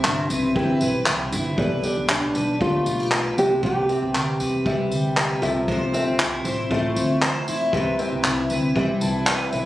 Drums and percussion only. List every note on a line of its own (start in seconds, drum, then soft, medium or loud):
0.05 clap loud
0.30 tambourine medium
0.56 kick loud
0.81 tambourine medium
1.06 clap loud
1.32 tambourine medium
1.58 kick loud
1.83 tambourine medium
2.09 clap loud
2.35 tambourine medium
2.61 kick loud
2.86 tambourine medium
3.12 clap loud
3.38 tambourine medium
3.63 kick loud
3.89 tambourine soft
4.15 clap medium
4.40 tambourine medium
4.66 kick loud
4.92 tambourine medium
5.17 clap loud
5.43 tambourine medium
5.68 kick loud
5.94 tambourine medium
6.20 clap loud
6.45 tambourine medium
6.71 kick loud
6.96 tambourine medium
7.22 clap loud
7.48 tambourine medium
7.73 kick loud
7.99 tambourine soft
8.24 clap loud
8.50 tambourine medium
8.76 kick medium
9.01 tambourine medium
9.27 clap loud
9.52 tambourine medium